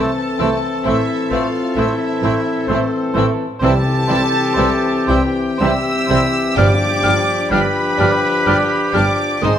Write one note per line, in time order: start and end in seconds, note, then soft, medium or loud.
0.00 3.46 E3 medium
0.00 0.11 A3 medium
0.00 3.46 C4 medium
0.00 0.57 A4 medium
0.00 3.45 A4 medium
0.00 0.11 C5 medium
0.00 0.86 A5 medium
0.38 0.48 C2 medium
0.38 0.49 C3 medium
0.38 0.47 E3 medium
0.38 0.47 A3 medium
0.38 0.57 A3 medium
0.38 0.46 C4 medium
0.38 0.48 E4 medium
0.38 0.55 C5 medium
0.38 0.50 E6 medium
0.84 0.94 A1 medium
0.84 0.94 A2 medium
0.84 0.93 E3 medium
0.84 0.93 A3 medium
0.84 1.03 A3 medium
0.84 0.93 C4 medium
0.84 0.92 E4 medium
0.84 1.32 E4 medium
0.84 1.01 C5 medium
0.84 1.31 E5 medium
0.84 0.97 E6 medium
1.31 1.40 A1 medium
1.31 1.40 A2 medium
1.31 1.39 E3 medium
1.31 1.39 A3 soft
1.31 1.49 A3 medium
1.31 1.40 C4 medium
1.31 1.40 E4 medium
1.31 1.77 F4 medium
1.31 1.47 C5 soft
1.31 1.78 F5 medium
1.31 1.42 E6 medium
1.76 1.85 A1 medium
1.76 1.86 A2 medium
1.76 1.84 E3 medium
1.76 1.84 A3 medium
1.76 1.94 A3 medium
1.76 1.86 C4 medium
1.76 1.85 E4 medium
1.76 2.70 E4 medium
1.76 1.94 C5 medium
1.76 2.69 E5 medium
1.76 1.89 E6 medium
2.22 2.31 A1 medium
2.22 2.31 A2 medium
2.22 2.30 E3 medium
2.22 2.30 A3 medium
2.22 2.40 A3 medium
2.22 2.32 C4 medium
2.22 2.32 E4 medium
2.22 2.40 C5 medium
2.22 2.34 E6 medium
2.68 2.77 A1 medium
2.68 2.77 A2 medium
2.68 2.77 E3 medium
2.68 2.76 A3 medium
2.68 2.87 A3 medium
2.68 3.15 C4 medium
2.68 2.84 C5 medium
2.68 3.15 C5 medium
2.68 2.80 E6 medium
2.72 2.80 C4 medium
2.72 2.80 E4 medium
3.13 3.24 A1 medium
3.13 3.23 A2 medium
3.13 3.22 E3 medium
3.13 3.22 A3 medium
3.13 3.32 A3 medium
3.13 3.25 C4 medium
3.13 3.25 E4 medium
3.13 3.29 C5 medium
3.13 3.26 E6 medium
3.59 3.70 C2 medium
3.59 3.69 C3 medium
3.59 3.70 E3 medium
3.59 3.78 G3 medium
3.59 3.71 G3 medium
3.59 3.70 C4 medium
3.59 5.57 G4 medium
3.59 5.10 A4 medium
3.59 3.75 C5 medium
3.59 5.04 A5 loud
3.63 5.05 C3 medium
3.63 5.57 E3 medium
3.63 5.57 C4 medium
3.63 3.71 E4 medium
3.63 3.74 E6 medium
4.07 4.16 C2 medium
4.07 4.17 C3 medium
4.07 4.17 E3 medium
4.07 4.25 G3 medium
4.07 4.17 G3 medium
4.07 4.17 C4 medium
4.07 4.17 E4 medium
4.07 4.23 C5 medium
4.07 4.20 E6 medium
4.54 4.65 C2 medium
4.54 4.65 C3 medium
4.54 4.73 G3 medium
4.54 4.65 G3 medium
4.54 4.65 C4 medium
4.54 4.65 E4 medium
4.54 4.70 C5 medium
4.58 4.66 E3 medium
4.58 4.69 E6 medium
5.07 5.17 C2 medium
5.07 5.16 C3 medium
5.07 5.16 E3 medium
5.07 5.16 G3 medium
5.07 5.25 G3 medium
5.07 5.17 C4 medium
5.07 5.16 E4 medium
5.07 5.63 G4 medium
5.07 5.23 C5 medium
5.07 5.61 G5 medium
5.07 5.22 E6 medium
5.58 5.69 C2 medium
5.58 5.69 C3 medium
5.58 5.69 E3 medium
5.58 6.55 E3 medium
5.58 5.68 G3 medium
5.58 5.77 G3 medium
5.58 6.55 C4 medium
5.58 6.55 G4 medium
5.58 5.74 C5 medium
5.58 6.57 E5 medium
5.58 6.56 E6 loud
5.58 5.72 E6 medium
5.63 5.71 C4 medium
5.63 5.71 E4 medium
6.07 6.18 C2 medium
6.07 6.18 C3 medium
6.07 6.18 E3 medium
6.07 6.18 G3 medium
6.07 6.27 G3 medium
6.07 6.18 C4 medium
6.07 6.18 E4 medium
6.07 6.23 C5 medium
6.07 6.21 E6 medium
6.56 6.65 G1 medium
6.56 6.65 G2 medium
6.56 7.95 G2 medium
6.56 6.66 F3 medium
6.56 7.51 F3 medium
6.56 6.65 G3 medium
6.56 6.73 G3 medium
6.56 6.64 D4 medium
6.56 7.51 D4 medium
6.56 6.64 G4 medium
6.56 7.50 G4 medium
6.56 6.73 D5 medium
6.56 7.53 D5 medium
6.56 7.51 D6 loud
6.56 6.68 F6 medium
7.02 7.13 G1 medium
7.02 7.12 G2 medium
7.02 7.13 F3 medium
7.02 7.20 G3 medium
7.02 7.13 G3 medium
7.02 7.10 D4 medium
7.02 7.10 G4 medium
7.02 7.19 D5 medium
7.02 7.14 F6 medium
7.51 7.60 G1 medium
7.51 7.59 G2 medium
7.51 7.60 F3 medium
7.51 9.39 F3 medium
7.51 7.68 G3 medium
7.51 7.60 G3 medium
7.51 7.60 D4 medium
7.51 9.39 D4 medium
7.51 7.60 G4 medium
7.51 9.39 G4 medium
7.51 8.95 B4 loud
7.51 7.67 D5 medium
7.51 8.92 B5 loud
7.51 7.62 F6 medium
7.97 8.08 G1 medium
7.97 8.07 G2 medium
7.97 8.08 F3 medium
7.97 8.15 G3 medium
7.97 8.08 G3 medium
7.97 8.06 D4 medium
7.97 8.06 G4 medium
7.97 8.13 D5 medium
7.97 8.10 F6 medium
8.46 8.55 G1 medium
8.46 8.55 G2 medium
8.46 8.55 F3 medium
8.46 8.64 G3 medium
8.46 8.56 G3 medium
8.46 8.54 D4 medium
8.46 8.55 G4 medium
8.46 8.63 D5 medium
8.46 8.57 F6 medium
8.93 9.03 G1 medium
8.93 9.03 G2 medium
8.93 9.01 F3 medium
8.93 9.01 G3 medium
8.93 9.12 G3 medium
8.93 9.02 D4 medium
8.93 9.02 G4 medium
8.93 9.45 D5 medium
8.93 9.12 D5 medium
8.93 9.42 D6 medium
8.93 9.04 F6 medium
9.41 9.51 G#1 medium
9.41 9.51 G#2 medium
9.41 9.50 D#3 medium
9.41 9.59 D#3 medium
9.41 9.49 G#3 medium
9.41 9.59 G#3 medium
9.41 9.52 C4 medium
9.41 9.59 C4 medium
9.41 9.52 D#4 medium
9.41 9.59 G#4 medium
9.41 9.59 C5 medium
9.41 9.59 C6 loud
9.41 9.53 D#6 medium